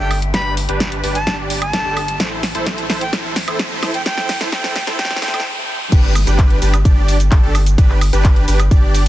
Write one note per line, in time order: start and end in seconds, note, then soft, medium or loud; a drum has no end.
0.00 0.32 G1 medium
0.00 0.12 D4 loud
0.00 0.12 G4 medium
0.00 0.12 A4 loud
0.00 0.19 G5 medium
0.00 riser medium
0.11 open hi-hat medium
0.11 high woodblock medium
0.22 closed hi-hat medium
0.34 0.66 G1 loud
0.34 0.55 D4 medium
0.34 0.55 G4 medium
0.34 0.55 B4 medium
0.34 0.54 B5 medium
0.34 kick loud
0.34 snare medium
0.34 closed hi-hat medium
0.57 open hi-hat loud
0.69 1.01 G1 medium
0.69 1.01 D4 medium
0.69 1.01 G4 medium
0.69 1.01 B4 medium
0.69 closed hi-hat soft
0.80 kick loud
0.80 snare medium
0.80 closed hi-hat medium
0.92 closed hi-hat soft
1.04 1.25 G1 medium
1.04 1.17 D4 medium
1.04 1.17 G4 medium
1.04 1.17 B4 medium
1.04 open hi-hat medium
1.15 1.36 A5 loud
1.15 closed hi-hat medium
1.27 1.71 G1 medium
1.27 1.59 D4 medium
1.27 1.59 G4 medium
1.27 1.59 D5 medium
1.27 kick loud
1.27 snare medium
1.27 closed hi-hat medium
1.50 open hi-hat loud
1.62 2.20 A5 medium
1.62 closed hi-hat medium
1.62 high woodblock medium
1.73 1.83 G1 medium
1.73 1.82 D4 medium
1.73 1.82 G4 medium
1.73 1.82 A4 medium
1.73 kick loud
1.73 snare medium
1.73 closed hi-hat medium
1.85 2.18 G1 loud
1.85 1.98 D4 medium
1.85 1.98 G4 medium
1.85 1.98 A4 loud
1.97 open hi-hat medium
1.97 high woodblock medium
2.08 closed hi-hat medium
2.20 2.53 A1 loud
2.20 2.41 E4 medium
2.20 2.41 A4 medium
2.20 2.41 C5 medium
2.20 kick loud
2.20 snare medium
2.20 closed hi-hat medium
2.43 snare medium
2.43 open hi-hat loud
2.55 2.87 A1 medium
2.55 2.87 E4 medium
2.55 2.87 A4 medium
2.55 2.87 C5 medium
2.55 closed hi-hat soft
2.66 kick loud
2.66 snare medium
2.66 closed hi-hat medium
2.78 closed hi-hat soft
2.90 3.11 A1 medium
2.90 3.03 E4 medium
2.90 3.03 A4 medium
2.90 3.03 C5 medium
2.90 snare medium
2.90 open hi-hat loud
3.01 3.11 G5 medium
3.01 closed hi-hat soft
3.13 3.46 A1 medium
3.13 3.34 E4 medium
3.13 3.34 A4 medium
3.13 3.34 C5 medium
3.13 kick loud
3.13 snare medium
3.13 closed hi-hat medium
3.36 snare medium
3.36 open hi-hat loud
3.48 3.80 A1 loud
3.48 3.80 E4 medium
3.48 3.80 A4 medium
3.48 3.80 C5 medium
3.48 closed hi-hat soft
3.48 high woodblock medium
3.59 kick loud
3.59 snare medium
3.59 closed hi-hat medium
3.83 4.04 A1 loud
3.83 3.96 E4 medium
3.83 3.96 A4 medium
3.83 3.96 C5 medium
3.83 snare medium
3.83 open hi-hat loud
3.83 high woodblock medium
3.94 4.04 G5 medium
3.94 closed hi-hat medium
4.06 4.39 A1 loud
4.06 4.27 E4 medium
4.06 4.27 A4 medium
4.06 4.27 C5 medium
4.06 4.39 G5 loud
4.06 kick loud
4.06 snare medium
4.06 closed hi-hat medium
4.18 snare medium
4.29 snare loud
4.29 open hi-hat loud
4.41 4.50 A1 medium
4.41 4.51 E4 medium
4.41 4.51 A4 medium
4.41 4.51 C5 medium
4.41 snare medium
4.41 closed hi-hat medium
4.52 4.85 A1 loud
4.52 4.74 E4 medium
4.52 4.74 A4 medium
4.52 4.74 C5 loud
4.52 4.85 G5 medium
4.52 kick loud
4.52 snare loud
4.52 closed hi-hat medium
4.64 snare medium
4.64 closed hi-hat soft
4.76 snare loud
4.76 open hi-hat medium
4.87 4.97 A1 loud
4.87 4.97 E4 medium
4.87 4.97 A4 medium
4.87 4.97 C5 loud
4.87 snare medium
4.87 closed hi-hat soft
4.99 5.20 A1 loud
4.99 5.20 E4 medium
4.99 5.20 A4 medium
4.99 5.20 C5 medium
4.99 5.20 G5 loud
4.99 kick loud
4.99 snare loud
4.99 closed hi-hat medium
5.05 snare medium
5.11 snare medium
5.11 closed hi-hat soft
5.16 snare medium
5.22 5.43 A1 loud
5.22 5.44 E4 medium
5.22 5.44 A4 medium
5.22 5.44 C5 loud
5.22 5.44 G5 loud
5.22 snare loud
5.22 open hi-hat loud
5.28 snare medium
5.34 snare medium
5.34 closed hi-hat soft
5.34 high woodblock medium
5.40 snare medium
5.92 6.25 G1 loud
5.92 6.14 D4 medium
5.92 6.14 G4 medium
5.92 6.14 B4 medium
5.92 kick loud
5.92 closed hi-hat medium
5.92 crash loud
5.92 shaker soft
6.15 open hi-hat loud
6.15 high woodblock medium
6.15 shaker medium
6.27 6.60 G1 medium
6.27 6.59 D4 medium
6.27 6.59 G4 medium
6.27 6.59 B4 medium
6.27 closed hi-hat medium
6.27 shaker soft
6.39 kick loud
6.39 clap loud
6.39 closed hi-hat medium
6.39 shaker soft
6.50 closed hi-hat soft
6.62 6.83 G1 loud
6.62 6.75 D4 medium
6.62 6.75 G4 medium
6.62 6.75 B4 medium
6.62 open hi-hat loud
6.62 shaker medium
6.74 closed hi-hat medium
6.74 high woodblock medium
6.74 shaker soft
6.85 7.29 G1 loud
6.85 7.17 D4 medium
6.85 7.17 G4 medium
6.85 7.17 D5 medium
6.85 kick loud
6.85 closed hi-hat medium
6.85 shaker soft
7.08 open hi-hat loud
7.08 shaker medium
7.20 closed hi-hat medium
7.20 shaker soft
7.32 7.41 G1 medium
7.32 7.41 D4 medium
7.32 7.41 G4 medium
7.32 7.41 A4 medium
7.32 kick loud
7.32 clap loud
7.32 closed hi-hat medium
7.32 shaker soft
7.43 7.76 G1 loud
7.43 7.57 D4 loud
7.43 7.57 G4 medium
7.43 7.57 A4 loud
7.55 open hi-hat loud
7.55 high woodblock medium
7.55 shaker medium
7.66 closed hi-hat medium
7.66 shaker soft
7.78 8.11 G1 loud
7.78 8.00 D4 medium
7.78 8.00 G4 medium
7.78 8.00 B4 medium
7.78 kick loud
7.78 closed hi-hat medium
7.78 shaker soft
7.90 clap soft
8.01 open hi-hat loud
8.01 high woodblock medium
8.01 shaker medium
8.13 8.46 G1 medium
8.13 8.45 D4 medium
8.13 8.45 G4 medium
8.13 8.45 B4 medium
8.13 closed hi-hat medium
8.13 shaker soft
8.25 kick loud
8.25 clap loud
8.25 closed hi-hat medium
8.25 shaker soft
8.36 closed hi-hat soft
8.48 8.69 G1 loud
8.48 8.61 D4 medium
8.48 8.61 G4 medium
8.48 8.61 B4 medium
8.48 open hi-hat loud
8.48 shaker medium
8.60 closed hi-hat soft
8.60 high woodblock medium
8.60 shaker soft
8.71 9.08 G1 loud
8.71 9.03 D4 medium
8.71 9.03 G4 medium
8.71 9.03 D5 medium
8.71 kick loud
8.71 closed hi-hat medium
8.71 shaker soft
8.94 open hi-hat loud
8.94 shaker medium